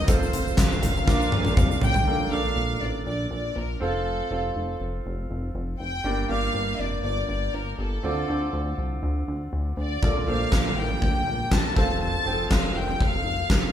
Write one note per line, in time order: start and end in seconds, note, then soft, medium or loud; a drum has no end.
0.00 0.10 G4 medium
0.00 0.10 A#4 medium
0.07 0.29 F1 loud
0.07 0.85 C4 medium
0.07 0.85 F4 medium
0.07 0.85 A4 medium
0.07 0.58 C5 medium
0.07 0.86 F5 medium
0.07 kick loud
0.07 closed hi-hat medium
0.07 shaker medium
0.23 shaker medium
0.33 0.53 F1 medium
0.33 closed hi-hat medium
0.33 shaker soft
0.47 shaker medium
0.57 0.78 F1 loud
0.57 1.83 F5 medium
0.57 kick loud
0.57 snare loud
0.57 clap medium
0.57 closed hi-hat medium
0.57 shaker medium
0.72 shaker soft
0.82 1.03 F1 loud
0.82 closed hi-hat medium
0.82 floor tom medium
0.82 shaker soft
0.96 shaker soft
1.06 1.28 A#1 loud
1.06 1.78 A#2 medium
1.06 1.84 D4 medium
1.06 1.85 F4 medium
1.06 1.85 A#4 medium
1.06 1.85 F5 medium
1.06 kick loud
1.06 snare soft
1.06 shaker medium
1.21 shaker soft
1.32 1.52 A#1 loud
1.32 high tom medium
1.45 high tom medium
1.45 shaker soft
1.57 1.77 C2 loud
1.57 kick loud
1.57 mid tom medium
1.57 shaker medium
1.71 shaker soft
1.81 2.02 A1 medium
1.81 2.29 G5 loud
1.81 floor tom medium
1.81 shaker soft
1.94 floor tom medium
1.94 shaker soft
2.06 2.27 A#1 loud
2.06 2.78 A#2 medium
2.06 2.26 D4 medium
2.06 2.26 A4 medium
2.06 2.26 A#4 medium
2.06 2.27 F5 medium
2.31 2.52 A#1 medium
2.31 3.09 D4 medium
2.31 3.09 A4 medium
2.31 3.09 A#4 medium
2.31 3.09 D5 medium
2.31 2.82 F5 medium
2.56 2.77 A#1 loud
2.81 3.02 A1 medium
2.81 3.06 D5 medium
3.06 3.27 A#1 medium
3.06 3.30 D5 medium
3.31 3.51 A#1 medium
3.31 3.55 D5 medium
3.56 3.77 A#1 medium
3.56 3.81 A#4 medium
3.80 4.22 F1 medium
3.80 4.20 C4 medium
3.80 4.21 F4 medium
3.80 4.21 A4 medium
3.80 4.77 A4 medium
3.80 4.21 F5 medium
4.31 4.51 F1 medium
4.31 5.08 C4 medium
4.31 5.08 F4 medium
4.31 5.08 A4 soft
4.31 5.09 F5 medium
4.56 4.76 F1 medium
4.80 5.01 F1 medium
5.06 5.26 F1 medium
5.30 5.50 F1 medium
5.55 5.75 F1 loud
5.80 6.00 F1 medium
5.80 6.27 G5 medium
6.04 6.25 G1 medium
6.04 6.76 G2 soft
6.04 6.24 A#3 medium
6.04 6.24 D4 medium
6.04 6.24 G4 medium
6.04 6.25 D5 medium
6.29 6.50 G1 medium
6.29 7.07 A#3 medium
6.29 7.07 D4 medium
6.29 7.07 G4 soft
6.29 7.08 D5 medium
6.29 6.76 F5 loud
6.54 6.75 G1 loud
6.79 7.00 F1 medium
6.79 7.04 D5 medium
7.03 7.24 G1 loud
7.03 7.28 D5 medium
7.29 7.49 G1 medium
7.29 7.52 D5 medium
7.53 7.74 G1 medium
7.53 7.79 A#4 medium
7.79 7.99 G1 medium
7.79 8.74 A4 medium
8.03 8.24 D2 medium
8.03 8.74 D3 medium
8.03 8.23 C4 medium
8.03 8.23 F4 medium
8.03 8.23 A4 medium
8.03 8.24 D5 medium
8.28 8.49 D2 medium
8.28 9.06 C4 medium
8.28 9.06 F4 soft
8.28 9.06 A4 soft
8.28 9.06 D5 medium
8.53 8.74 D2 loud
8.78 8.98 C2 medium
9.03 9.23 D2 loud
9.28 9.48 D2 medium
9.53 9.73 D2 medium
9.77 9.98 D2 loud
9.77 10.25 D5 medium
10.02 10.23 A#1 medium
10.02 10.73 A#2 soft
10.02 10.22 A#3 medium
10.02 10.22 F4 medium
10.02 10.22 A4 medium
10.02 10.22 D5 medium
10.02 kick medium
10.26 10.48 A#1 medium
10.26 11.04 A#3 medium
10.26 11.05 F4 medium
10.26 11.05 A4 soft
10.26 10.34 C5 soft
10.26 10.78 F5 medium
10.34 11.08 D5 medium
10.52 10.73 A#1 loud
10.52 kick medium
10.52 snare medium
10.52 clap medium
10.77 10.98 A1 medium
10.77 11.53 G5 medium
11.02 11.22 A#1 loud
11.02 kick medium
11.27 11.47 A#1 loud
11.51 11.72 A#1 medium
11.51 11.76 A5 medium
11.51 kick medium
11.51 snare medium
11.51 clap medium
11.76 12.17 F1 medium
11.76 12.16 C4 medium
11.76 12.16 F4 medium
11.76 12.16 A4 medium
11.76 12.17 F5 medium
11.76 12.00 A5 medium
11.76 kick medium
11.76 snare soft
12.02 12.48 A5 medium
12.25 12.46 F1 medium
12.25 13.03 C4 medium
12.25 13.04 F4 medium
12.25 12.32 G#4 soft
12.25 13.04 G5 medium
12.32 13.07 A4 soft
12.51 12.71 F1 loud
12.51 12.76 F5 medium
12.51 kick medium
12.51 snare medium
12.51 clap medium
12.76 12.96 F1 medium
12.76 13.01 G5 medium
13.00 13.21 F1 loud
13.00 13.72 F5 medium
13.00 kick medium
13.24 13.45 F1 medium
13.50 13.71 F1 loud
13.50 kick loud
13.50 snare medium
13.50 clap medium